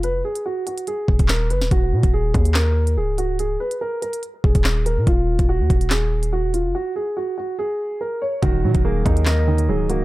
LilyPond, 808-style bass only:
\new Staff \with { instrumentName = "808-style bass" } { \clef bass \time 4/4 \key ees \minor \tempo 4 = 143 f,,8 r2 ees,,16 ees,,8. ges,,16 ees,,16 | ees,,8 bes,16 ees,,8. ees,4. des,,4~ | des,,8 r2 ees,,16 ees,,4 bes,16 | ees,,8. ees,,8 ees,16 ees,,2~ ees,,16 f,,16 |
r1 | ees,,8 bes,16 ees,,8. ees,4. des,,4 | }